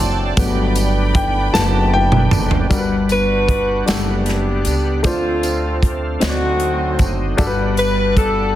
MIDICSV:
0, 0, Header, 1, 7, 480
1, 0, Start_track
1, 0, Key_signature, 1, "major"
1, 0, Tempo, 779221
1, 232, Time_signature, 6, 3, 24, 8
1, 5270, End_track
2, 0, Start_track
2, 0, Title_t, "String section"
2, 0, Program_c, 0, 48
2, 0, Note_on_c, 0, 74, 78
2, 0, Note_on_c, 0, 79, 78
2, 0, Note_on_c, 0, 81, 70
2, 208, Note_off_c, 0, 79, 0
2, 220, Note_off_c, 0, 81, 0
2, 221, Note_on_c, 0, 83, 82
2, 222, Note_on_c, 0, 79, 69
2, 1646, Note_off_c, 0, 74, 0
2, 1650, Note_off_c, 0, 83, 0
2, 1651, Note_off_c, 0, 79, 0
2, 5270, End_track
3, 0, Start_track
3, 0, Title_t, "Saxophone section"
3, 0, Program_c, 1, 65
3, 1921, Note_on_c, 1, 66, 72
3, 1924, Note_on_c, 1, 62, 66
3, 1924, Note_on_c, 1, 71, 93
3, 2372, Note_off_c, 1, 71, 0
3, 2395, Note_off_c, 1, 62, 0
3, 2400, Note_on_c, 1, 59, 59
3, 2403, Note_on_c, 1, 62, 59
3, 2405, Note_on_c, 1, 67, 88
3, 2610, Note_off_c, 1, 66, 0
3, 3090, Note_off_c, 1, 59, 0
3, 3092, Note_off_c, 1, 62, 0
3, 3118, Note_off_c, 1, 67, 0
3, 3122, Note_on_c, 1, 57, 51
3, 3123, Note_on_c, 1, 60, 52
3, 3125, Note_on_c, 1, 65, 76
3, 3598, Note_off_c, 1, 65, 0
3, 3812, Note_off_c, 1, 57, 0
3, 3812, Note_off_c, 1, 60, 0
3, 3846, Note_on_c, 1, 66, 100
3, 3847, Note_on_c, 1, 60, 72
3, 3849, Note_on_c, 1, 57, 72
3, 4354, Note_off_c, 1, 66, 0
3, 4535, Note_off_c, 1, 60, 0
3, 4536, Note_off_c, 1, 57, 0
3, 4798, Note_on_c, 1, 71, 93
3, 5018, Note_off_c, 1, 71, 0
3, 5035, Note_on_c, 1, 69, 79
3, 5257, Note_off_c, 1, 69, 0
3, 5270, End_track
4, 0, Start_track
4, 0, Title_t, "Grand piano"
4, 0, Program_c, 2, 0
4, 0, Control_c, 2, 64, 127
4, 0, Note_on_c, 2, 52, 46
4, 0, Note_on_c, 2, 54, 44
4, 0, Note_on_c, 2, 60, 52
4, 0, Note_on_c, 2, 76, 79
4, 0, Note_on_c, 2, 78, 78
4, 0, Note_on_c, 2, 79, 85
4, 0, Note_on_c, 2, 81, 83
4, 0, Note_on_c, 2, 84, 87
4, 228, Note_off_c, 2, 54, 0
4, 228, Note_on_c, 2, 54, 52
4, 233, Note_on_c, 2, 57, 48
4, 237, Note_on_c, 2, 59, 55
4, 239, Control_c, 2, 64, 0
4, 240, Note_off_c, 2, 60, 0
4, 240, Note_off_c, 2, 78, 0
4, 240, Note_off_c, 2, 81, 0
4, 240, Note_off_c, 2, 84, 0
4, 243, Note_off_c, 2, 52, 0
4, 243, Note_off_c, 2, 79, 0
4, 245, Note_off_c, 2, 76, 0
4, 359, Control_c, 2, 64, 127
4, 549, Note_off_c, 2, 54, 0
4, 551, Note_off_c, 2, 57, 0
4, 553, Note_off_c, 2, 59, 0
4, 710, Note_on_c, 2, 79, 85
4, 943, Note_on_c, 2, 54, 47
4, 946, Note_on_c, 2, 57, 42
4, 947, Note_on_c, 2, 81, 99
4, 948, Note_on_c, 2, 59, 51
4, 958, Note_off_c, 2, 79, 0
4, 1162, Note_off_c, 2, 54, 0
4, 1164, Note_off_c, 2, 57, 0
4, 1165, Note_off_c, 2, 59, 0
4, 1192, Note_on_c, 2, 79, 97
4, 1196, Note_off_c, 2, 81, 0
4, 1646, Note_off_c, 2, 79, 0
4, 1661, Note_on_c, 2, 55, 63
4, 1663, Note_on_c, 2, 62, 60
4, 1666, Note_on_c, 2, 43, 51
4, 1671, Note_on_c, 2, 66, 58
4, 1673, Note_on_c, 2, 70, 56
4, 1680, Control_c, 2, 64, 0
4, 1711, Note_off_c, 2, 70, 0
4, 1714, Note_on_c, 2, 71, 70
4, 1792, Control_c, 2, 64, 127
4, 2105, Note_off_c, 2, 55, 0
4, 2106, Note_off_c, 2, 62, 0
4, 2110, Note_off_c, 2, 66, 0
4, 2132, Note_off_c, 2, 71, 0
4, 2363, Note_off_c, 2, 43, 0
4, 2378, Note_on_c, 2, 55, 53
4, 2384, Note_on_c, 2, 62, 49
4, 2388, Note_on_c, 2, 78, 51
4, 2397, Note_on_c, 2, 69, 62
4, 2824, Note_off_c, 2, 55, 0
4, 2827, Note_off_c, 2, 62, 0
4, 2829, Note_off_c, 2, 78, 0
4, 2833, Note_off_c, 2, 69, 0
4, 3098, Note_on_c, 2, 57, 66
4, 3104, Note_on_c, 2, 62, 60
4, 3109, Note_on_c, 2, 50, 54
4, 3111, Note_on_c, 2, 65, 58
4, 3117, Note_on_c, 2, 72, 72
4, 3119, Control_c, 2, 64, 0
4, 3235, Control_c, 2, 64, 127
4, 3544, Note_off_c, 2, 57, 0
4, 3547, Note_off_c, 2, 62, 0
4, 3551, Note_off_c, 2, 65, 0
4, 3554, Note_off_c, 2, 72, 0
4, 3805, Note_off_c, 2, 50, 0
4, 3820, Note_on_c, 2, 60, 53
4, 3824, Note_on_c, 2, 63, 52
4, 3828, Note_on_c, 2, 50, 51
4, 3831, Note_on_c, 2, 66, 52
4, 3836, Note_on_c, 2, 73, 50
4, 3839, Control_c, 2, 64, 0
4, 3873, Note_off_c, 2, 73, 0
4, 3877, Note_on_c, 2, 74, 61
4, 3944, Control_c, 2, 64, 127
4, 4266, Note_off_c, 2, 60, 0
4, 4268, Note_off_c, 2, 63, 0
4, 4271, Note_off_c, 2, 66, 0
4, 4294, Note_off_c, 2, 74, 0
4, 4526, Note_off_c, 2, 50, 0
4, 4543, Note_on_c, 2, 55, 82
4, 4547, Note_on_c, 2, 62, 79
4, 4551, Note_on_c, 2, 66, 73
4, 4552, Note_on_c, 2, 43, 65
4, 4558, Control_c, 2, 64, 0
4, 4558, Note_on_c, 2, 69, 72
4, 4594, Note_off_c, 2, 69, 0
4, 4598, Note_on_c, 2, 71, 92
4, 4664, Control_c, 2, 64, 127
4, 4988, Note_off_c, 2, 55, 0
4, 4990, Note_off_c, 2, 62, 0
4, 4992, Note_off_c, 2, 66, 0
4, 5015, Note_off_c, 2, 71, 0
4, 5248, Note_off_c, 2, 43, 0
4, 5270, End_track
5, 0, Start_track
5, 0, Title_t, "Tonewheel organ"
5, 0, Program_c, 3, 16
5, 0, Note_on_c, 3, 54, 55
5, 0, Note_on_c, 3, 60, 53
5, 0, Note_on_c, 3, 62, 51
5, 0, Note_on_c, 3, 69, 65
5, 207, Note_off_c, 3, 60, 0
5, 207, Note_off_c, 3, 62, 0
5, 208, Note_off_c, 3, 54, 0
5, 228, Note_off_c, 3, 69, 0
5, 239, Note_on_c, 3, 50, 70
5, 239, Note_on_c, 3, 59, 64
5, 239, Note_on_c, 3, 62, 65
5, 239, Note_on_c, 3, 79, 77
5, 1649, Note_off_c, 3, 50, 0
5, 1649, Note_off_c, 3, 59, 0
5, 1649, Note_off_c, 3, 62, 0
5, 1649, Note_off_c, 3, 79, 0
5, 1673, Note_on_c, 3, 55, 45
5, 1675, Note_on_c, 3, 62, 50
5, 1676, Note_on_c, 3, 78, 53
5, 1677, Note_on_c, 3, 59, 44
5, 3087, Note_off_c, 3, 55, 0
5, 3088, Note_off_c, 3, 59, 0
5, 3088, Note_off_c, 3, 62, 0
5, 3088, Note_off_c, 3, 78, 0
5, 3111, Note_on_c, 3, 50, 52
5, 3112, Note_on_c, 3, 57, 48
5, 3113, Note_on_c, 3, 65, 55
5, 3114, Note_on_c, 3, 60, 44
5, 3829, Note_off_c, 3, 60, 0
5, 3830, Note_off_c, 3, 50, 0
5, 3832, Note_off_c, 3, 57, 0
5, 3832, Note_off_c, 3, 65, 0
5, 3837, Note_on_c, 3, 60, 50
5, 3838, Note_on_c, 3, 50, 50
5, 3838, Note_on_c, 3, 63, 59
5, 3839, Note_on_c, 3, 54, 51
5, 4554, Note_off_c, 3, 60, 0
5, 4555, Note_off_c, 3, 50, 0
5, 4555, Note_off_c, 3, 63, 0
5, 4556, Note_off_c, 3, 54, 0
5, 4561, Note_on_c, 3, 62, 64
5, 4563, Note_on_c, 3, 59, 60
5, 4563, Note_on_c, 3, 78, 72
5, 4565, Note_on_c, 3, 55, 60
5, 5270, Note_off_c, 3, 55, 0
5, 5270, Note_off_c, 3, 59, 0
5, 5270, Note_off_c, 3, 62, 0
5, 5270, Note_off_c, 3, 78, 0
5, 5270, End_track
6, 0, Start_track
6, 0, Title_t, "Upright bass"
6, 0, Program_c, 4, 32
6, 0, Note_on_c, 4, 30, 73
6, 213, Note_off_c, 4, 30, 0
6, 229, Note_on_c, 4, 31, 96
6, 925, Note_off_c, 4, 31, 0
6, 952, Note_on_c, 4, 30, 91
6, 1406, Note_off_c, 4, 30, 0
6, 1432, Note_on_c, 4, 30, 86
6, 1652, Note_off_c, 4, 30, 0
6, 1668, Note_on_c, 4, 31, 80
6, 2364, Note_off_c, 4, 31, 0
6, 2391, Note_on_c, 4, 30, 79
6, 2846, Note_off_c, 4, 30, 0
6, 2871, Note_on_c, 4, 37, 75
6, 3091, Note_off_c, 4, 37, 0
6, 3109, Note_on_c, 4, 38, 81
6, 3805, Note_off_c, 4, 38, 0
6, 3832, Note_on_c, 4, 38, 88
6, 4287, Note_off_c, 4, 38, 0
6, 4307, Note_on_c, 4, 30, 73
6, 4530, Note_off_c, 4, 30, 0
6, 4550, Note_on_c, 4, 31, 82
6, 5247, Note_off_c, 4, 31, 0
6, 5270, End_track
7, 0, Start_track
7, 0, Title_t, "Drums"
7, 228, Note_on_c, 9, 42, 80
7, 229, Note_on_c, 9, 36, 99
7, 232, Note_on_c, 9, 54, 52
7, 290, Note_off_c, 9, 42, 0
7, 291, Note_off_c, 9, 36, 0
7, 294, Note_off_c, 9, 54, 0
7, 464, Note_on_c, 9, 54, 45
7, 466, Note_on_c, 9, 42, 54
7, 526, Note_off_c, 9, 54, 0
7, 527, Note_off_c, 9, 42, 0
7, 707, Note_on_c, 9, 36, 80
7, 708, Note_on_c, 9, 42, 60
7, 769, Note_off_c, 9, 36, 0
7, 770, Note_off_c, 9, 42, 0
7, 952, Note_on_c, 9, 38, 50
7, 954, Note_on_c, 9, 54, 89
7, 1014, Note_off_c, 9, 38, 0
7, 1016, Note_off_c, 9, 54, 0
7, 1305, Note_on_c, 9, 47, 67
7, 1367, Note_off_c, 9, 47, 0
7, 1425, Note_on_c, 9, 45, 93
7, 1433, Note_on_c, 9, 54, 50
7, 1487, Note_off_c, 9, 45, 0
7, 1495, Note_off_c, 9, 54, 0
7, 1545, Note_on_c, 9, 43, 81
7, 1607, Note_off_c, 9, 43, 0
7, 1667, Note_on_c, 9, 36, 87
7, 1667, Note_on_c, 9, 42, 67
7, 1675, Note_on_c, 9, 54, 49
7, 1729, Note_off_c, 9, 36, 0
7, 1729, Note_off_c, 9, 42, 0
7, 1736, Note_off_c, 9, 54, 0
7, 1905, Note_on_c, 9, 42, 44
7, 1907, Note_on_c, 9, 54, 41
7, 1966, Note_off_c, 9, 42, 0
7, 1969, Note_off_c, 9, 54, 0
7, 2147, Note_on_c, 9, 36, 72
7, 2148, Note_on_c, 9, 42, 50
7, 2208, Note_off_c, 9, 36, 0
7, 2210, Note_off_c, 9, 42, 0
7, 2387, Note_on_c, 9, 42, 66
7, 2391, Note_on_c, 9, 54, 77
7, 2394, Note_on_c, 9, 38, 98
7, 2449, Note_off_c, 9, 42, 0
7, 2453, Note_off_c, 9, 54, 0
7, 2456, Note_off_c, 9, 38, 0
7, 2623, Note_on_c, 9, 42, 46
7, 2638, Note_on_c, 9, 38, 33
7, 2685, Note_off_c, 9, 42, 0
7, 2699, Note_off_c, 9, 38, 0
7, 2863, Note_on_c, 9, 42, 56
7, 2876, Note_on_c, 9, 54, 45
7, 2925, Note_off_c, 9, 42, 0
7, 2938, Note_off_c, 9, 54, 0
7, 3104, Note_on_c, 9, 42, 70
7, 3107, Note_on_c, 9, 36, 89
7, 3116, Note_on_c, 9, 54, 44
7, 3166, Note_off_c, 9, 42, 0
7, 3169, Note_off_c, 9, 36, 0
7, 3177, Note_off_c, 9, 54, 0
7, 3346, Note_on_c, 9, 42, 44
7, 3346, Note_on_c, 9, 54, 43
7, 3408, Note_off_c, 9, 42, 0
7, 3408, Note_off_c, 9, 54, 0
7, 3588, Note_on_c, 9, 36, 71
7, 3592, Note_on_c, 9, 42, 54
7, 3650, Note_off_c, 9, 36, 0
7, 3654, Note_off_c, 9, 42, 0
7, 3827, Note_on_c, 9, 42, 74
7, 3834, Note_on_c, 9, 38, 92
7, 3836, Note_on_c, 9, 54, 72
7, 3889, Note_off_c, 9, 42, 0
7, 3896, Note_off_c, 9, 38, 0
7, 3897, Note_off_c, 9, 54, 0
7, 4064, Note_on_c, 9, 42, 47
7, 4125, Note_off_c, 9, 42, 0
7, 4305, Note_on_c, 9, 42, 59
7, 4308, Note_on_c, 9, 36, 76
7, 4317, Note_on_c, 9, 54, 45
7, 4367, Note_off_c, 9, 42, 0
7, 4370, Note_off_c, 9, 36, 0
7, 4378, Note_off_c, 9, 54, 0
7, 4548, Note_on_c, 9, 42, 71
7, 4550, Note_on_c, 9, 36, 88
7, 4556, Note_on_c, 9, 54, 45
7, 4609, Note_off_c, 9, 42, 0
7, 4611, Note_off_c, 9, 36, 0
7, 4618, Note_off_c, 9, 54, 0
7, 4788, Note_on_c, 9, 42, 47
7, 4792, Note_on_c, 9, 54, 43
7, 4850, Note_off_c, 9, 42, 0
7, 4853, Note_off_c, 9, 54, 0
7, 5030, Note_on_c, 9, 36, 71
7, 5032, Note_on_c, 9, 42, 49
7, 5092, Note_off_c, 9, 36, 0
7, 5093, Note_off_c, 9, 42, 0
7, 5270, End_track
0, 0, End_of_file